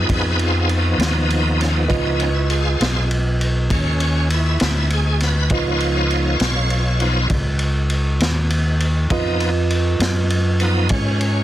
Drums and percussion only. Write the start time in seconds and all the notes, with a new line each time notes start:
0.09 kick, ride
0.39 ride
0.69 ride
1.00 snare, ride
1.30 ride
1.61 snare, ride
1.90 kick, ride
2.20 ride
2.50 ride
2.81 snare, ride
3.11 ride
3.41 ride
3.70 kick, ride
4.00 ride
4.30 ride
4.60 snare, ride
4.90 ride
5.20 snare, ride
5.50 kick, ride
5.80 ride
6.10 ride
6.40 snare, ride
6.70 ride
7.00 ride
7.30 kick, ride
7.59 ride
7.90 ride
8.20 snare, ride
8.50 ride
8.80 ride
9.10 kick, ride
9.40 ride
9.70 ride
10.00 snare, ride
10.30 ride
10.60 ride
10.89 kick, ride
11.21 ride